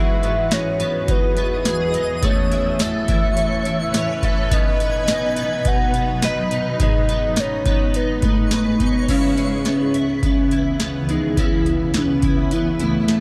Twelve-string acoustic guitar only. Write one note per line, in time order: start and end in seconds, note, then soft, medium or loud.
0.00 2.22 E3 medium
0.00 0.22 B3 medium
0.00 0.51 D#4 medium
0.00 1.65 G#4 medium
0.23 0.79 B3 medium
0.51 1.07 D#4 medium
0.80 1.37 B3 medium
1.08 1.94 D#4 medium
1.37 2.83 B3 medium
1.65 2.28 G#4 medium
1.95 2.29 D#4 medium
2.23 4.51 A3 medium
2.51 3.07 E4 medium
2.80 3.36 A4 medium
3.09 3.65 E4 medium
3.37 4.22 A4 medium
3.66 4.57 E4 medium
3.95 4.57 C#5 medium
4.23 4.57 A4 medium
4.51 6.80 B2 medium
4.80 5.37 B3 medium
5.09 5.66 D#4 medium
5.37 5.94 B3 medium
5.66 6.51 D#4 medium
5.95 7.08 B3 medium
6.23 8.51 B4 medium
6.51 7.37 D#4 medium
6.80 9.08 G#2 medium
7.09 7.66 B3 medium
7.37 7.93 D#4 medium
7.66 8.23 B3 medium
7.95 8.79 D#4 medium
8.23 9.66 B3 medium
8.52 11.41 B4 medium
8.80 9.09 D#4 medium
9.09 11.36 C#3 medium
9.09 9.94 E4 medium
9.38 11.08 G#3 soft
9.66 10.22 B3 medium
9.94 10.51 E4 medium
10.23 10.79 B3 medium
10.52 11.38 E4 medium
10.80 11.93 B3 medium
11.09 11.66 G#3 medium
11.38 13.20 C#3 medium
11.38 12.22 E4 medium
11.95 12.50 B3 medium
12.23 12.79 E4 medium
12.51 13.08 B3 medium
12.80 13.20 E4 medium
13.08 13.20 A3 medium